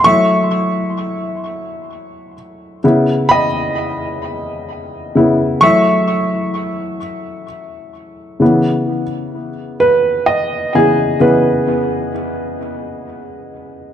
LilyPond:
<<
  \new Staff \with { instrumentName = "Grand piano" } { \time 6/8 \key cis \minor \tempo 4. = 43 <e'' cis'''>2~ <e'' cis'''>8 r8 | r8 <dis'' b''>2~ <dis'' b''>8 | <e'' cis'''>2 r4 | r4. b'8 dis''8 gis'8 |
b'4 r2 | }
  \new Staff \with { instrumentName = "Grand piano" } { \time 6/8 \key cis \minor <fis a e'>2. | <cis b e'>8 r2 <cis b e'>8 | <fis a e'>4. r4. | <cis e b>8 r2 <cis e b>8 |
<cis e b>2. | }
>>